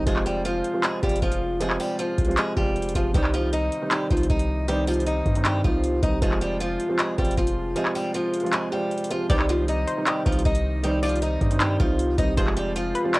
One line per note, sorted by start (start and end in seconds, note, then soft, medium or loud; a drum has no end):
0.06 0.62 F1 loud
0.06 0.52 C3 loud
0.06 0.52 F3 medium
0.06 0.53 G#3 medium
0.06 0.22 G#3 medium
0.06 0.53 C4 medium
0.06 0.53 F4 loud
0.06 0.22 G#4 loud
0.06 kick loud
0.06 closed hi-hat medium
0.16 clap medium
0.26 0.41 G3 medium
0.26 0.41 G4 medium
0.26 closed hi-hat medium
0.45 0.82 F3 medium
0.45 0.81 F4 medium
0.45 closed hi-hat medium
0.64 closed hi-hat medium
0.73 0.93 C3 medium
0.73 0.93 F3 medium
0.73 0.93 G#3 medium
0.73 0.94 C4 medium
0.73 0.94 F4 medium
0.83 0.99 G#3 medium
0.83 0.98 G#4 medium
0.83 clap loud
0.83 closed hi-hat medium
1.02 1.21 F1 loud
1.02 1.42 C3 medium
1.02 1.42 F3 medium
1.02 1.18 G3 medium
1.02 1.42 G#3 medium
1.02 1.42 C4 medium
1.02 1.42 F4 medium
1.02 1.18 G4 medium
1.02 kick loud
1.02 closed hi-hat soft
1.09 closed hi-hat medium
1.16 closed hi-hat medium
1.22 1.77 F1 loud
1.22 1.59 F3 medium
1.22 1.58 F4 medium
1.22 kick medium
1.22 closed hi-hat medium
1.32 closed hi-hat medium
1.60 2.06 C3 loud
1.60 2.06 F3 medium
1.60 2.06 G#3 medium
1.60 1.76 G#3 medium
1.60 2.07 C4 medium
1.60 2.07 F4 loud
1.60 1.76 G#4 medium
1.60 closed hi-hat medium
1.70 clap medium
1.80 1.95 G3 medium
1.80 1.95 G4 medium
1.80 open hi-hat medium
1.99 2.36 F3 medium
1.99 2.35 F4 medium
1.99 closed hi-hat medium
2.18 2.37 C2 loud
2.18 kick medium
2.18 closed hi-hat medium
2.25 2.47 C3 medium
2.25 2.47 F3 medium
2.25 2.48 G#3 medium
2.25 closed hi-hat medium
2.29 2.48 C4 medium
2.29 2.48 F4 medium
2.29 closed hi-hat soft
2.37 2.53 G#3 medium
2.37 2.52 G#4 medium
2.37 clap loud
2.37 closed hi-hat medium
2.56 2.94 F1 loud
2.56 2.82 C3 medium
2.56 2.83 F3 medium
2.56 2.93 G3 medium
2.56 2.83 G#3 medium
2.56 2.83 C4 medium
2.56 2.83 F4 medium
2.56 2.93 G4 medium
2.56 kick loud
2.76 closed hi-hat medium
2.82 closed hi-hat medium
2.89 closed hi-hat medium
2.94 3.14 F1 loud
2.94 3.08 C3 medium
2.94 3.08 F3 medium
2.94 3.11 F3 medium
2.94 3.08 G#3 medium
2.94 3.08 C4 medium
2.94 3.10 F4 medium
2.94 3.09 F4 medium
2.94 kick medium
2.94 closed hi-hat medium
3.14 3.70 C2 loud
3.14 3.60 C3 loud
3.14 3.60 D#3 medium
3.14 3.60 G3 medium
3.14 3.30 G3 medium
3.14 3.60 C4 medium
3.14 3.61 D#4 loud
3.14 3.29 G4 medium
3.14 kick loud
3.14 closed hi-hat medium
3.24 clap medium
3.34 3.49 F3 medium
3.34 3.49 F4 medium
3.34 closed hi-hat medium
3.53 3.89 D#4 medium
3.53 3.89 D#5 medium
3.53 closed hi-hat medium
3.72 closed hi-hat medium
3.81 4.01 C3 medium
3.81 4.01 D#3 medium
3.81 4.01 G3 medium
3.81 4.02 C4 medium
3.81 4.02 D#4 medium
3.91 4.07 G3 medium
3.91 4.06 G4 medium
3.91 clap loud
3.91 closed hi-hat medium
4.09 4.29 C2 loud
4.09 4.49 C3 medium
4.09 4.49 D#3 medium
4.09 4.26 F3 medium
4.09 4.50 G3 medium
4.09 4.50 C4 medium
4.09 4.50 D#4 medium
4.09 4.25 F4 medium
4.09 kick loud
4.09 closed hi-hat soft
4.17 closed hi-hat medium
4.23 closed hi-hat medium
4.30 5.22 C2 loud
4.30 4.66 D#4 medium
4.30 4.66 D#5 medium
4.30 kick medium
4.30 closed hi-hat medium
4.39 closed hi-hat medium
4.67 5.14 C3 medium
4.67 5.14 D#3 medium
4.67 5.14 G3 medium
4.67 4.84 G3 medium
4.67 5.14 C4 medium
4.67 5.14 D#4 loud
4.67 4.83 G4 loud
4.67 closed hi-hat medium
4.87 5.03 F3 medium
4.87 5.02 F4 medium
4.87 closed hi-hat medium
4.87 open hi-hat medium
4.94 closed hi-hat medium
5.00 closed hi-hat medium
5.06 5.43 D#4 medium
5.06 5.43 D#5 medium
5.06 closed hi-hat medium
5.26 5.63 G2 loud
5.26 kick medium
5.26 closed hi-hat soft
5.35 5.55 C3 medium
5.35 5.55 D#3 medium
5.35 5.55 G3 medium
5.35 5.56 C4 medium
5.35 5.56 D#4 medium
5.35 closed hi-hat medium
5.45 5.61 G3 medium
5.45 5.60 G4 medium
5.45 clap loud
5.45 closed hi-hat medium
5.63 6.01 C2 loud
5.63 5.90 C3 medium
5.63 5.90 D#3 medium
5.63 6.01 F3 medium
5.63 5.90 G3 medium
5.63 5.91 C4 medium
5.63 5.91 D#4 medium
5.63 6.00 F4 medium
5.63 kick loud
5.84 closed hi-hat medium
6.02 6.21 C2 loud
6.02 6.15 C3 medium
6.02 6.16 D#3 medium
6.02 6.16 G3 medium
6.02 6.16 C4 medium
6.02 6.18 D#4 medium
6.02 6.16 D#4 medium
6.02 6.18 D#5 medium
6.02 kick medium
6.02 closed hi-hat medium
6.21 6.77 F1 loud
6.21 6.68 C3 loud
6.21 6.68 F3 loud
6.21 6.68 G#3 medium
6.21 6.37 G#3 medium
6.21 6.68 C4 medium
6.21 6.68 F4 loud
6.21 6.37 G#4 loud
6.21 kick loud
6.21 closed hi-hat medium
6.32 clap medium
6.41 6.57 G3 medium
6.41 6.56 G4 medium
6.41 closed hi-hat medium
6.60 6.97 F3 medium
6.60 6.97 F4 medium
6.60 closed hi-hat medium
6.80 closed hi-hat medium
6.88 7.08 C3 medium
6.88 7.09 F3 medium
6.88 7.09 G#3 medium
6.88 7.09 C4 medium
6.88 7.09 F4 medium
6.99 7.14 G#3 medium
6.99 7.14 G#4 medium
6.99 clap loud
6.99 closed hi-hat medium
7.17 7.37 F1 loud
7.17 7.57 C3 medium
7.17 7.57 F3 medium
7.17 7.34 G3 medium
7.17 7.57 G#3 medium
7.17 7.58 C4 medium
7.17 7.58 F4 medium
7.17 7.33 G4 medium
7.17 kick loud
7.17 closed hi-hat soft
7.25 closed hi-hat medium
7.31 closed hi-hat medium
7.37 7.74 F1 loud
7.37 7.74 F3 medium
7.37 7.74 F4 medium
7.37 kick medium
7.37 closed hi-hat medium
7.47 closed hi-hat medium
7.75 8.21 C3 loud
7.75 8.22 F3 medium
7.75 8.22 G#3 medium
7.75 7.91 G#3 medium
7.75 8.22 C4 medium
7.75 8.22 F4 loud
7.75 7.91 G#4 medium
7.75 closed hi-hat medium
7.86 clap medium
7.95 8.11 G3 medium
7.95 8.10 G4 medium
7.95 open hi-hat medium
8.14 8.51 F3 medium
8.14 8.51 F4 medium
8.14 closed hi-hat medium
8.34 closed hi-hat medium
8.40 8.63 C3 medium
8.40 8.63 F3 medium
8.40 8.63 G#3 medium
8.40 closed hi-hat medium
8.44 8.63 C4 medium
8.44 8.63 F4 medium
8.44 closed hi-hat soft
8.53 8.68 G#3 medium
8.53 8.68 G#4 medium
8.53 clap loud
8.53 closed hi-hat medium
8.71 8.98 C3 medium
8.71 8.98 F3 medium
8.71 9.09 G3 medium
8.71 8.98 G#3 medium
8.71 8.98 C4 medium
8.71 8.99 F4 medium
8.71 9.08 G4 medium
8.91 closed hi-hat medium
8.98 closed hi-hat medium
9.04 closed hi-hat medium
9.10 9.23 C3 medium
9.10 9.23 F3 medium
9.10 9.26 F3 medium
9.10 9.24 G#3 medium
9.10 9.24 C4 medium
9.10 9.26 F4 medium
9.10 9.24 F4 medium
9.10 closed hi-hat medium
9.29 9.85 C2 loud
9.29 9.75 C3 loud
9.29 9.75 D#3 medium
9.29 9.76 G3 medium
9.29 9.45 G3 medium
9.29 9.76 C4 loud
9.29 9.76 D#4 loud
9.29 9.45 G4 medium
9.29 9.84 D5 loud
9.29 kick loud
9.29 closed hi-hat medium
9.39 clap medium
9.49 9.65 F3 medium
9.49 9.64 F4 medium
9.49 closed hi-hat medium
9.68 10.04 D#4 medium
9.68 10.05 D#5 medium
9.68 closed hi-hat medium
9.87 10.06 C5 medium
9.87 closed hi-hat medium
9.96 10.16 C3 medium
9.96 10.17 D#3 medium
9.96 10.17 G3 medium
9.96 10.17 C4 medium
9.96 10.17 D#4 medium
10.07 10.22 G3 medium
10.07 10.22 G4 medium
10.07 10.80 D#5 medium
10.07 clap loud
10.07 closed hi-hat medium
10.25 10.44 C2 loud
10.25 10.65 C3 medium
10.25 10.65 D#3 medium
10.25 10.41 F3 medium
10.25 10.65 G3 medium
10.25 10.65 C4 medium
10.25 10.65 D#4 medium
10.25 10.41 F4 medium
10.25 kick loud
10.25 closed hi-hat soft
10.32 closed hi-hat medium
10.39 closed hi-hat medium
10.45 11.37 C2 loud
10.45 10.81 D#4 medium
10.45 10.82 D#5 medium
10.45 kick loud
10.45 closed hi-hat medium
10.55 closed hi-hat medium
10.83 11.29 C3 medium
10.83 11.29 D#3 medium
10.83 11.29 G3 medium
10.83 10.99 G3 medium
10.83 11.30 C4 medium
10.83 11.30 D#4 loud
10.83 10.98 G4 loud
10.83 closed hi-hat medium
11.03 11.18 F3 medium
11.03 11.18 F4 medium
11.03 11.21 D5 medium
11.03 closed hi-hat medium
11.03 open hi-hat medium
11.09 closed hi-hat medium
11.16 closed hi-hat medium
11.22 11.58 D#4 medium
11.22 11.59 D#5 medium
11.22 closed hi-hat medium
11.41 11.78 G2 loud
11.41 kick loud
11.41 closed hi-hat soft
11.50 11.70 C3 medium
11.50 11.71 D#3 medium
11.50 11.71 G3 medium
11.50 11.71 C4 medium
11.50 11.71 D#4 medium
11.50 closed hi-hat medium
11.60 11.76 G3 medium
11.60 11.75 G4 medium
11.60 clap loud
11.60 closed hi-hat medium
11.78 12.17 C2 loud
11.78 12.05 C3 medium
11.78 12.06 D#3 medium
11.78 12.16 F3 medium
11.78 12.06 G3 medium
11.78 12.06 C4 medium
11.78 12.06 D#4 medium
11.78 12.16 F4 medium
11.78 kick loud
11.99 closed hi-hat medium
12.17 12.37 C2 loud
12.17 12.31 C3 medium
12.17 12.31 D#3 medium
12.17 12.31 G3 medium
12.17 12.31 C4 medium
12.17 12.33 D#4 medium
12.17 12.32 D#4 medium
12.17 12.34 D#5 medium
12.17 kick medium
12.17 closed hi-hat medium
12.37 12.93 F1 loud
12.37 12.83 C3 loud
12.37 12.83 F3 loud
12.37 12.83 G#3 medium
12.37 12.53 G#3 medium
12.37 12.84 C4 loud
12.37 12.84 F4 loud
12.37 12.52 G#4 loud
12.37 12.92 C5 loud
12.37 kick loud
12.37 closed hi-hat medium
12.47 clap medium
12.57 12.72 G3 medium
12.57 12.72 G4 medium
12.57 closed hi-hat medium
12.76 13.12 F3 medium
12.76 13.12 F4 medium
12.76 closed hi-hat medium
12.95 13.13 B4 medium
12.95 closed hi-hat medium
13.04 13.20 C3 medium
13.04 13.20 F3 medium
13.04 13.20 G#3 medium
13.04 13.20 C4 medium
13.04 13.20 F4 medium
13.14 13.20 G#3 medium
13.14 13.20 G#4 medium
13.14 13.20 D5 loud
13.14 clap loud
13.14 closed hi-hat medium